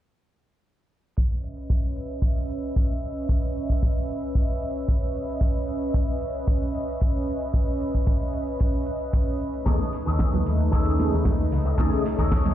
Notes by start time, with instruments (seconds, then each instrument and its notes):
1.17 analog synth pad C#4 B4 D#5 E5, kick, closed hi-hat
1.30 closed hi-hat
1.43 closed hi-hat
1.57 closed hi-hat
1.70 kick, closed hi-hat
1.83 closed hi-hat
1.96 closed hi-hat
2.10 closed hi-hat
2.22 kick, closed hi-hat
2.37 closed hi-hat
2.49 closed hi-hat
2.63 closed hi-hat
2.76 kick, closed hi-hat
3.03 closed hi-hat
3.16 closed hi-hat
3.29 kick, closed hi-hat
3.43 closed hi-hat
3.56 closed hi-hat
3.70 kick, closed hi-hat
3.82 kick, closed hi-hat
3.96 closed hi-hat
4.09 closed hi-hat
4.23 closed hi-hat
4.35 kick, closed hi-hat
4.49 closed hi-hat
4.62 closed hi-hat
4.76 closed hi-hat
4.88 kick, closed hi-hat
5.15 closed hi-hat
5.29 closed hi-hat
5.41 kick, closed hi-hat
5.56 closed hi-hat
5.68 closed hi-hat
5.82 closed hi-hat
5.94 kick, closed hi-hat
6.08 closed hi-hat
6.21 closed hi-hat
6.35 closed hi-hat
6.47 kick, closed hi-hat
6.62 closed hi-hat
6.74 closed hi-hat
6.88 closed hi-hat
7.01 kick, closed hi-hat
7.27 closed hi-hat
7.41 closed hi-hat
7.54 kick, closed hi-hat
7.68 closed hi-hat
7.80 closed hi-hat
7.94 kick, closed hi-hat
8.06 kick, closed hi-hat
8.20 closed hi-hat
8.33 closed hi-hat
8.47 closed hi-hat
8.60 kick, closed hi-hat
8.74 closed hi-hat
8.86 closed hi-hat
9.00 closed hi-hat
9.13 kick, closed hi-hat
9.40 analog synth pad A3 D#4, closed hi-hat
9.54 closed hi-hat
9.65 fingered electric bass D#2, analog polysynth A3 C#4 D#4 G#4, clean electric guitar G#4 A4 C#5 D#5, kick, closed hi-hat, high conga
9.80 closed hi-hat
9.93 open hi-hat
10.06 fingered electric bass D#2, clean electric guitar G#4 A4 C#5 D#5, closed hi-hat
10.19 kick, snare, closed hi-hat
10.33 closed hi-hat, high conga, low conga
10.46 fingered electric bass D#2, open hi-hat
10.60 closed hi-hat
10.71 fingered electric bass D#2, analog polysynth A3 C#4 D#4 G#4, clean electric guitar G#4 A4 C#5 D#5, kick, closed hi-hat
10.87 closed hi-hat
10.98 analog polysynth A3 C#4 D#4 G#4, open hi-hat, high conga
11.13 fingered electric bass D#2, closed hi-hat
11.25 kick, snare, closed hi-hat
11.51 fingered electric bass C#2, analog synth pad C#5, muted clean electric guitar stroke, open hi-hat
11.65 muted clean electric guitar stroke, closed hi-hat
11.78 fingered electric bass D#2, analog polysynth A3 C#4 D#4 G#4, clean electric guitar G#4 A4 C#5 D#5, kick, closed hi-hat, high conga
11.93 closed hi-hat
12.05 open hi-hat
12.18 fingered electric bass D#2, clean electric guitar G#4 A4 C#5 D#5, kick, closed hi-hat
12.32 kick, snare, closed hi-hat
12.45 closed hi-hat, high conga, low conga